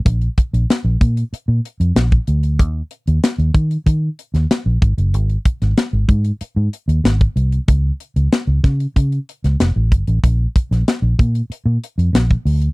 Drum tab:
HH |xxxxx-xxx-xxxxxx|x-xxxxxxx-xxx-xx|xxxxx-xxx-xxxxxx|x-xxx-xxxxxxx-xx|
SD |----o-------o---|----o------oo---|---oo-------o---|----o-o----oo---|
BD |o-o---o------o--|o-----o-o-----o-|--o---o------o--|o-----o-o-----o-|

HH |x-xxx-xxx-xxxxox|
SD |---oo-------o---|
BD |o-o---o------o--|